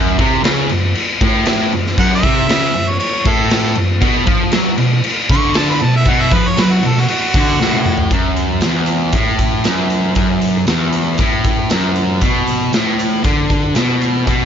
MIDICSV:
0, 0, Header, 1, 4, 480
1, 0, Start_track
1, 0, Key_signature, 3, "minor"
1, 0, Tempo, 512383
1, 1855, Time_signature, 4, 2, 24, 8
1, 13538, End_track
2, 0, Start_track
2, 0, Title_t, "Harmonica"
2, 0, Program_c, 0, 22
2, 1872, Note_on_c, 0, 78, 116
2, 1975, Note_off_c, 0, 78, 0
2, 2015, Note_on_c, 0, 76, 119
2, 2708, Note_on_c, 0, 73, 94
2, 2722, Note_off_c, 0, 76, 0
2, 2798, Note_off_c, 0, 73, 0
2, 2803, Note_on_c, 0, 73, 103
2, 3071, Note_on_c, 0, 69, 117
2, 3085, Note_off_c, 0, 73, 0
2, 3526, Note_off_c, 0, 69, 0
2, 4981, Note_on_c, 0, 85, 103
2, 5205, Note_off_c, 0, 85, 0
2, 5217, Note_on_c, 0, 81, 96
2, 5322, Note_off_c, 0, 81, 0
2, 5341, Note_on_c, 0, 83, 97
2, 5461, Note_on_c, 0, 81, 84
2, 5475, Note_off_c, 0, 83, 0
2, 5564, Note_off_c, 0, 81, 0
2, 5588, Note_on_c, 0, 76, 107
2, 5706, Note_on_c, 0, 78, 100
2, 5720, Note_off_c, 0, 76, 0
2, 5821, Note_on_c, 0, 76, 106
2, 5835, Note_off_c, 0, 78, 0
2, 5936, Note_on_c, 0, 71, 101
2, 5950, Note_off_c, 0, 76, 0
2, 6075, Note_on_c, 0, 73, 113
2, 6089, Note_off_c, 0, 71, 0
2, 6195, Note_on_c, 0, 71, 101
2, 6209, Note_off_c, 0, 73, 0
2, 6304, Note_on_c, 0, 66, 90
2, 6318, Note_off_c, 0, 71, 0
2, 6444, Note_on_c, 0, 69, 98
2, 6458, Note_off_c, 0, 66, 0
2, 6553, Note_on_c, 0, 66, 81
2, 6567, Note_off_c, 0, 69, 0
2, 6638, Note_off_c, 0, 66, 0
2, 6643, Note_on_c, 0, 66, 112
2, 7572, Note_off_c, 0, 66, 0
2, 13538, End_track
3, 0, Start_track
3, 0, Title_t, "Distorted electric guitar"
3, 0, Program_c, 1, 30
3, 0, Note_on_c, 1, 42, 97
3, 168, Note_off_c, 1, 42, 0
3, 170, Note_on_c, 1, 48, 106
3, 406, Note_off_c, 1, 48, 0
3, 412, Note_on_c, 1, 49, 115
3, 647, Note_off_c, 1, 49, 0
3, 657, Note_on_c, 1, 42, 80
3, 849, Note_off_c, 1, 42, 0
3, 1138, Note_on_c, 1, 45, 100
3, 1609, Note_off_c, 1, 45, 0
3, 1617, Note_on_c, 1, 42, 76
3, 1808, Note_off_c, 1, 42, 0
3, 1855, Note_on_c, 1, 42, 108
3, 2087, Note_off_c, 1, 42, 0
3, 2088, Note_on_c, 1, 48, 107
3, 2324, Note_off_c, 1, 48, 0
3, 2330, Note_on_c, 1, 49, 110
3, 2564, Note_off_c, 1, 49, 0
3, 2574, Note_on_c, 1, 42, 81
3, 2765, Note_off_c, 1, 42, 0
3, 3047, Note_on_c, 1, 45, 102
3, 3519, Note_on_c, 1, 42, 80
3, 3521, Note_off_c, 1, 45, 0
3, 3716, Note_off_c, 1, 42, 0
3, 3750, Note_on_c, 1, 47, 113
3, 3990, Note_off_c, 1, 47, 0
3, 3994, Note_on_c, 1, 53, 95
3, 4233, Note_off_c, 1, 53, 0
3, 4242, Note_on_c, 1, 54, 108
3, 4467, Note_off_c, 1, 54, 0
3, 4471, Note_on_c, 1, 47, 82
3, 4670, Note_off_c, 1, 47, 0
3, 4968, Note_on_c, 1, 50, 112
3, 5438, Note_off_c, 1, 50, 0
3, 5452, Note_on_c, 1, 47, 82
3, 5639, Note_off_c, 1, 47, 0
3, 5694, Note_on_c, 1, 47, 118
3, 5920, Note_off_c, 1, 47, 0
3, 5926, Note_on_c, 1, 53, 110
3, 6156, Note_off_c, 1, 53, 0
3, 6162, Note_on_c, 1, 54, 114
3, 6394, Note_off_c, 1, 54, 0
3, 6405, Note_on_c, 1, 47, 79
3, 6594, Note_off_c, 1, 47, 0
3, 6888, Note_on_c, 1, 50, 111
3, 7116, Note_off_c, 1, 50, 0
3, 7129, Note_on_c, 1, 45, 108
3, 7597, Note_off_c, 1, 45, 0
3, 7605, Note_on_c, 1, 42, 96
3, 8075, Note_off_c, 1, 42, 0
3, 8093, Note_on_c, 1, 40, 97
3, 8549, Note_on_c, 1, 45, 106
3, 8560, Note_off_c, 1, 40, 0
3, 9029, Note_off_c, 1, 45, 0
3, 9033, Note_on_c, 1, 42, 86
3, 9496, Note_off_c, 1, 42, 0
3, 9508, Note_on_c, 1, 42, 94
3, 9989, Note_off_c, 1, 42, 0
3, 9992, Note_on_c, 1, 40, 97
3, 10474, Note_off_c, 1, 40, 0
3, 10481, Note_on_c, 1, 45, 103
3, 10959, Note_off_c, 1, 45, 0
3, 10975, Note_on_c, 1, 42, 93
3, 11446, Note_off_c, 1, 42, 0
3, 11451, Note_on_c, 1, 47, 99
3, 11925, Note_off_c, 1, 47, 0
3, 11934, Note_on_c, 1, 45, 109
3, 12397, Note_off_c, 1, 45, 0
3, 12401, Note_on_c, 1, 50, 102
3, 12880, Note_off_c, 1, 50, 0
3, 12885, Note_on_c, 1, 47, 91
3, 13359, Note_off_c, 1, 47, 0
3, 13370, Note_on_c, 1, 47, 104
3, 13538, Note_off_c, 1, 47, 0
3, 13538, End_track
4, 0, Start_track
4, 0, Title_t, "Drums"
4, 177, Note_on_c, 9, 36, 106
4, 178, Note_on_c, 9, 49, 67
4, 271, Note_off_c, 9, 36, 0
4, 271, Note_off_c, 9, 49, 0
4, 412, Note_on_c, 9, 49, 84
4, 424, Note_on_c, 9, 38, 116
4, 506, Note_off_c, 9, 49, 0
4, 518, Note_off_c, 9, 38, 0
4, 649, Note_on_c, 9, 49, 70
4, 743, Note_off_c, 9, 49, 0
4, 893, Note_on_c, 9, 49, 80
4, 986, Note_off_c, 9, 49, 0
4, 1135, Note_on_c, 9, 36, 117
4, 1139, Note_on_c, 9, 49, 68
4, 1228, Note_off_c, 9, 36, 0
4, 1233, Note_off_c, 9, 49, 0
4, 1364, Note_on_c, 9, 49, 89
4, 1376, Note_on_c, 9, 38, 116
4, 1458, Note_off_c, 9, 49, 0
4, 1470, Note_off_c, 9, 38, 0
4, 1615, Note_on_c, 9, 49, 58
4, 1708, Note_off_c, 9, 49, 0
4, 1746, Note_on_c, 9, 38, 29
4, 1840, Note_off_c, 9, 38, 0
4, 1851, Note_on_c, 9, 49, 82
4, 1854, Note_on_c, 9, 36, 106
4, 1945, Note_off_c, 9, 49, 0
4, 1947, Note_off_c, 9, 36, 0
4, 2092, Note_on_c, 9, 36, 117
4, 2093, Note_on_c, 9, 49, 58
4, 2186, Note_off_c, 9, 36, 0
4, 2187, Note_off_c, 9, 49, 0
4, 2335, Note_on_c, 9, 49, 79
4, 2347, Note_on_c, 9, 38, 118
4, 2429, Note_off_c, 9, 49, 0
4, 2441, Note_off_c, 9, 38, 0
4, 2569, Note_on_c, 9, 49, 64
4, 2663, Note_off_c, 9, 49, 0
4, 2815, Note_on_c, 9, 49, 78
4, 2908, Note_off_c, 9, 49, 0
4, 3049, Note_on_c, 9, 36, 116
4, 3050, Note_on_c, 9, 49, 63
4, 3143, Note_off_c, 9, 36, 0
4, 3144, Note_off_c, 9, 49, 0
4, 3280, Note_on_c, 9, 49, 84
4, 3293, Note_on_c, 9, 38, 121
4, 3374, Note_off_c, 9, 49, 0
4, 3386, Note_off_c, 9, 38, 0
4, 3517, Note_on_c, 9, 49, 61
4, 3610, Note_off_c, 9, 49, 0
4, 3763, Note_on_c, 9, 36, 109
4, 3763, Note_on_c, 9, 49, 82
4, 3856, Note_off_c, 9, 49, 0
4, 3857, Note_off_c, 9, 36, 0
4, 3994, Note_on_c, 9, 49, 64
4, 4002, Note_on_c, 9, 36, 106
4, 4088, Note_off_c, 9, 49, 0
4, 4095, Note_off_c, 9, 36, 0
4, 4231, Note_on_c, 9, 49, 85
4, 4243, Note_on_c, 9, 38, 109
4, 4325, Note_off_c, 9, 49, 0
4, 4337, Note_off_c, 9, 38, 0
4, 4475, Note_on_c, 9, 49, 71
4, 4568, Note_off_c, 9, 49, 0
4, 4719, Note_on_c, 9, 49, 88
4, 4813, Note_off_c, 9, 49, 0
4, 4960, Note_on_c, 9, 36, 116
4, 4961, Note_on_c, 9, 49, 72
4, 5054, Note_off_c, 9, 36, 0
4, 5055, Note_off_c, 9, 49, 0
4, 5191, Note_on_c, 9, 49, 84
4, 5203, Note_on_c, 9, 38, 109
4, 5285, Note_off_c, 9, 49, 0
4, 5297, Note_off_c, 9, 38, 0
4, 5431, Note_on_c, 9, 49, 57
4, 5524, Note_off_c, 9, 49, 0
4, 5669, Note_on_c, 9, 49, 74
4, 5676, Note_on_c, 9, 36, 95
4, 5763, Note_off_c, 9, 49, 0
4, 5769, Note_off_c, 9, 36, 0
4, 5906, Note_on_c, 9, 49, 64
4, 5916, Note_on_c, 9, 36, 114
4, 6000, Note_off_c, 9, 49, 0
4, 6009, Note_off_c, 9, 36, 0
4, 6157, Note_on_c, 9, 49, 89
4, 6170, Note_on_c, 9, 38, 123
4, 6251, Note_off_c, 9, 49, 0
4, 6263, Note_off_c, 9, 38, 0
4, 6397, Note_on_c, 9, 49, 66
4, 6490, Note_off_c, 9, 49, 0
4, 6535, Note_on_c, 9, 38, 33
4, 6628, Note_off_c, 9, 38, 0
4, 6636, Note_on_c, 9, 49, 84
4, 6730, Note_off_c, 9, 49, 0
4, 6878, Note_on_c, 9, 36, 115
4, 6884, Note_on_c, 9, 49, 62
4, 6972, Note_off_c, 9, 36, 0
4, 6978, Note_off_c, 9, 49, 0
4, 7132, Note_on_c, 9, 38, 68
4, 7226, Note_off_c, 9, 38, 0
4, 7236, Note_on_c, 9, 48, 61
4, 7329, Note_off_c, 9, 48, 0
4, 7358, Note_on_c, 9, 45, 93
4, 7452, Note_off_c, 9, 45, 0
4, 7470, Note_on_c, 9, 43, 91
4, 7563, Note_off_c, 9, 43, 0
4, 7596, Note_on_c, 9, 36, 99
4, 7597, Note_on_c, 9, 42, 83
4, 7690, Note_off_c, 9, 36, 0
4, 7690, Note_off_c, 9, 42, 0
4, 7836, Note_on_c, 9, 42, 67
4, 7929, Note_off_c, 9, 42, 0
4, 8064, Note_on_c, 9, 42, 82
4, 8076, Note_on_c, 9, 38, 101
4, 8157, Note_off_c, 9, 42, 0
4, 8169, Note_off_c, 9, 38, 0
4, 8301, Note_on_c, 9, 42, 76
4, 8394, Note_off_c, 9, 42, 0
4, 8548, Note_on_c, 9, 42, 84
4, 8554, Note_on_c, 9, 36, 102
4, 8642, Note_off_c, 9, 42, 0
4, 8647, Note_off_c, 9, 36, 0
4, 8795, Note_on_c, 9, 36, 87
4, 8795, Note_on_c, 9, 42, 69
4, 8888, Note_off_c, 9, 42, 0
4, 8889, Note_off_c, 9, 36, 0
4, 9031, Note_on_c, 9, 42, 91
4, 9043, Note_on_c, 9, 38, 106
4, 9124, Note_off_c, 9, 42, 0
4, 9136, Note_off_c, 9, 38, 0
4, 9274, Note_on_c, 9, 42, 58
4, 9368, Note_off_c, 9, 42, 0
4, 9509, Note_on_c, 9, 42, 73
4, 9520, Note_on_c, 9, 36, 103
4, 9603, Note_off_c, 9, 42, 0
4, 9613, Note_off_c, 9, 36, 0
4, 9757, Note_on_c, 9, 42, 62
4, 9851, Note_off_c, 9, 42, 0
4, 9993, Note_on_c, 9, 42, 72
4, 10005, Note_on_c, 9, 38, 102
4, 10087, Note_off_c, 9, 42, 0
4, 10099, Note_off_c, 9, 38, 0
4, 10234, Note_on_c, 9, 42, 65
4, 10328, Note_off_c, 9, 42, 0
4, 10469, Note_on_c, 9, 42, 75
4, 10482, Note_on_c, 9, 36, 99
4, 10563, Note_off_c, 9, 42, 0
4, 10576, Note_off_c, 9, 36, 0
4, 10718, Note_on_c, 9, 42, 68
4, 10723, Note_on_c, 9, 36, 88
4, 10812, Note_off_c, 9, 42, 0
4, 10816, Note_off_c, 9, 36, 0
4, 10957, Note_on_c, 9, 42, 93
4, 10969, Note_on_c, 9, 38, 100
4, 11051, Note_off_c, 9, 42, 0
4, 11063, Note_off_c, 9, 38, 0
4, 11201, Note_on_c, 9, 42, 57
4, 11295, Note_off_c, 9, 42, 0
4, 11440, Note_on_c, 9, 42, 85
4, 11445, Note_on_c, 9, 36, 92
4, 11533, Note_off_c, 9, 42, 0
4, 11539, Note_off_c, 9, 36, 0
4, 11686, Note_on_c, 9, 42, 66
4, 11779, Note_off_c, 9, 42, 0
4, 11925, Note_on_c, 9, 42, 88
4, 11937, Note_on_c, 9, 38, 102
4, 12018, Note_off_c, 9, 42, 0
4, 12030, Note_off_c, 9, 38, 0
4, 12171, Note_on_c, 9, 42, 66
4, 12265, Note_off_c, 9, 42, 0
4, 12403, Note_on_c, 9, 42, 81
4, 12408, Note_on_c, 9, 36, 111
4, 12497, Note_off_c, 9, 42, 0
4, 12502, Note_off_c, 9, 36, 0
4, 12645, Note_on_c, 9, 42, 73
4, 12647, Note_on_c, 9, 36, 86
4, 12738, Note_off_c, 9, 42, 0
4, 12741, Note_off_c, 9, 36, 0
4, 12880, Note_on_c, 9, 42, 90
4, 12892, Note_on_c, 9, 38, 116
4, 12974, Note_off_c, 9, 42, 0
4, 12986, Note_off_c, 9, 38, 0
4, 13129, Note_on_c, 9, 42, 67
4, 13223, Note_off_c, 9, 42, 0
4, 13368, Note_on_c, 9, 42, 81
4, 13371, Note_on_c, 9, 36, 90
4, 13461, Note_off_c, 9, 42, 0
4, 13464, Note_off_c, 9, 36, 0
4, 13538, End_track
0, 0, End_of_file